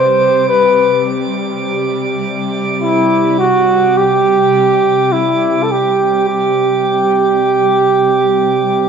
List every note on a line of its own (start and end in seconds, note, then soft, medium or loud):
0.00 8.89 C3 medium
0.00 8.89 G3 medium
0.00 0.48 C5 loud
0.00 8.89 D6 medium
0.49 1.03 B4 medium
2.82 3.35 E4 medium
3.39 3.98 F#4 loud
3.97 5.14 G4 loud
5.13 5.64 E4 medium
5.63 5.73 A4 medium
5.71 6.28 G4 loud
6.29 8.89 G4 medium